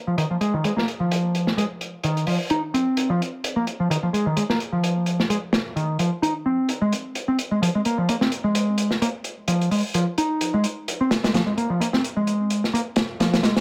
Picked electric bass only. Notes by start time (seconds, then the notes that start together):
0.07 F3
0.18 D#3
0.31 F3
0.41 G#3
0.54 D#3
0.64 G#3
0.77 A#3
1.00 F3
1.57 G#3
2.04 D#3
2.27 F3
2.51 D#4
2.74 C4
3.10 F3
3.56 A#3
3.80 F3
3.90 D#3
4.03 F3
4.13 G#3
4.26 D#3
4.37 G#3
4.50 A#3
4.72 F3
5.30 G#3
5.76 D#3
5.99 F3
6.22 D#4
6.46 C4
6.82 G#3
7.28 C4
7.51 G#3
7.62 F3
7.75 G#3
7.86 A#3
7.98 F3
8.09 A#3
8.21 C4
8.44 G#3
9.02 A#3
9.48 F3
9.71 G#3
9.94 F3
10.18 D#4
10.54 G#3
11.01 C4
11.24 G#3
11.34 F3
11.46 G#3
11.57 A#3
11.70 F3
11.80 A#3
11.93 C4
12.17 G#3
12.73 A#3
13.20 F3
13.43 G#3